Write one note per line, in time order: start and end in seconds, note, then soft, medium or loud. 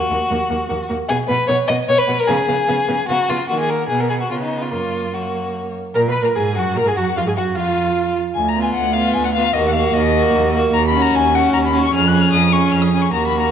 0.00 0.87 F#4 medium
0.10 0.19 D#2 medium
0.10 0.20 A#3 medium
0.10 0.18 F#5 medium
0.31 0.38 D#2 medium
0.31 0.38 A#3 medium
0.31 0.39 F#5 medium
0.49 0.58 D#2 medium
0.49 0.58 A#3 medium
0.49 0.57 F#5 medium
0.68 0.78 D#2 medium
0.68 0.76 A#3 medium
0.68 0.77 F#5 medium
0.89 0.98 D#2 medium
0.89 0.97 A#3 medium
0.89 0.98 F#5 medium
1.08 1.18 B2 medium
1.08 1.17 B3 medium
1.08 1.17 G#4 loud
1.08 1.16 F#5 medium
1.28 1.37 B2 medium
1.28 1.36 B3 medium
1.28 1.47 B4 loud
1.28 1.37 F#5 medium
1.48 1.57 B2 medium
1.48 1.56 B3 medium
1.48 1.56 C#5 loud
1.48 1.56 F#5 medium
1.68 1.77 B2 medium
1.68 1.77 B3 medium
1.68 1.76 D#5 loud
1.68 1.77 F#5 medium
1.89 1.97 B2 medium
1.89 1.97 B3 medium
1.89 2.00 C#5 loud
1.89 1.96 F#5 medium
1.98 2.21 B4 medium
2.07 2.16 B2 medium
2.07 2.16 B3 medium
2.07 2.15 F#5 medium
2.20 2.29 A#4 loud
2.27 2.37 C#3 medium
2.27 2.35 B3 medium
2.27 3.08 G#4 loud
2.27 2.36 F5 medium
2.47 2.57 C#3 medium
2.47 2.55 B3 medium
2.47 2.56 F5 medium
2.68 2.77 C#3 medium
2.68 2.76 B3 medium
2.68 2.76 F5 medium
2.87 2.97 C#3 medium
2.87 2.96 B3 medium
2.87 2.95 F5 medium
3.09 3.18 C#3 medium
3.09 3.17 B3 medium
3.09 3.31 F#4 loud
3.09 3.18 F5 medium
3.28 3.38 C#3 medium
3.28 3.37 B3 medium
3.28 3.48 F4 medium
3.28 3.36 F5 medium
3.48 3.87 D#3 medium
3.48 3.87 A#3 medium
3.48 3.59 F#4 medium
3.48 3.86 F#5 medium
3.60 3.71 G#4 medium
3.70 3.88 A#4 medium
3.89 4.30 B2 medium
3.89 4.30 B3 medium
3.89 4.02 G#4 medium
3.89 4.33 F#5 medium
4.00 4.09 A#4 medium
4.10 4.14 G#4 medium
4.21 4.30 F#4 medium
4.31 4.73 C#3 medium
4.31 4.73 B3 medium
4.31 4.35 F4 medium
4.31 4.70 C#5 medium
4.42 4.63 D#4 medium
4.62 4.72 F4 medium
4.70 5.75 F#2 medium
4.70 5.11 A#3 medium
4.70 5.15 F4 medium
4.70 5.11 C#5 medium
5.12 5.73 A#3 soft
5.12 5.54 F#4 medium
5.12 5.73 C#5 soft
5.94 6.10 A#2 medium
5.94 6.00 A#4 medium
5.94 6.11 A#4 medium
5.94 6.01 A#5 medium
6.08 6.21 B2 medium
6.08 6.23 B4 medium
6.08 6.25 B4 medium
6.08 6.16 B5 medium
6.22 6.27 A#2 medium
6.22 6.37 A#4 medium
6.22 6.29 A#5 medium
6.36 6.58 G#2 medium
6.36 6.55 G#4 medium
6.36 6.60 G#4 medium
6.36 6.56 G#5 medium
6.55 6.77 F#2 medium
6.55 6.78 F#4 medium
6.55 6.76 F#4 medium
6.55 6.77 F#5 medium
6.75 6.84 A#2 medium
6.75 6.89 A#4 medium
6.75 6.88 A#4 medium
6.75 6.89 A#5 medium
6.85 6.89 G#2 medium
6.85 6.96 G#4 medium
6.85 6.98 G#4 medium
6.85 6.97 G#5 medium
6.96 7.15 F#2 medium
6.96 7.04 F#4 medium
6.96 7.16 F#4 medium
6.96 7.19 F#5 medium
7.16 7.20 F2 medium
7.16 7.21 F4 medium
7.16 7.22 F4 medium
7.16 7.26 F5 medium
7.26 7.38 G#2 medium
7.26 7.30 G#4 medium
7.26 7.32 G#4 medium
7.26 7.32 G#5 medium
7.36 7.57 F#2 medium
7.36 7.57 F#4 medium
7.36 7.45 F#4 medium
7.36 7.44 F#5 medium
7.55 8.15 F2 medium
7.55 8.15 F4 medium
7.55 8.14 F5 medium
8.34 8.70 D2 medium
8.34 8.49 G#5 loud
8.48 8.61 A#5 loud
8.55 8.94 B3 medium
8.55 8.95 F4 medium
8.62 8.67 G#5 medium
8.73 9.10 D2 medium
8.73 8.95 F#5 loud
8.93 9.34 B3 medium
8.93 9.34 F4 medium
8.93 9.15 F5 loud
9.14 9.51 D2 medium
9.14 9.24 G#5 loud
9.25 9.29 F#5 loud
9.33 9.55 B3 medium
9.33 9.54 F4 medium
9.33 9.55 F5 loud
9.53 9.90 D#2 medium
9.53 9.74 A#3 medium
9.53 9.74 F#4 medium
9.53 9.64 D#5 loud
9.68 9.73 F#5 loud
9.74 10.14 A#3 medium
9.74 10.14 F#4 medium
9.74 9.95 F5 loud
9.93 10.29 D#2 loud
9.93 10.53 D#5 loud
10.14 10.53 A#3 medium
10.14 10.53 F#4 medium
10.33 10.68 D#2 medium
10.54 10.73 A#3 medium
10.54 10.73 F#4 medium
10.72 11.08 D#2 loud
10.72 10.85 A#5 loud
10.88 11.03 B5 loud
10.93 11.32 C#4 medium
10.93 11.32 F#4 medium
11.02 11.16 A#5 loud
11.13 11.48 D#2 loud
11.13 11.36 G#5 loud
11.33 11.71 C#4 medium
11.33 11.73 F#4 medium
11.33 11.53 F#5 loud
11.52 11.88 D#2 medium
11.52 11.57 A#5 loud
11.66 11.84 B5 loud
11.72 11.91 C#4 medium
11.72 11.93 F#4 medium
11.85 11.94 C#6 loud
11.91 12.29 F2 loud
11.91 12.11 C#4 medium
11.91 12.12 G#4 medium
11.91 12.09 F6 loud
12.07 12.22 F#6 loud
12.12 12.52 C#4 medium
12.12 12.52 G#4 medium
12.21 12.31 F6 loud
12.32 12.69 F2 loud
12.32 12.54 D#6 loud
12.52 12.92 C#4 medium
12.52 12.93 G#4 medium
12.52 12.73 C#6 loud
12.71 13.09 F2 medium
12.71 12.83 F6 loud
12.81 13.03 D#6 loud
12.93 13.12 C#4 medium
12.93 13.12 G#4 medium
13.01 13.12 C#6 loud
13.13 13.51 D#2 medium
13.13 13.51 A#3 medium
13.13 13.51 F#4 medium
13.13 13.26 A#5 loud
13.27 13.39 B5 loud
13.40 13.51 A#5 medium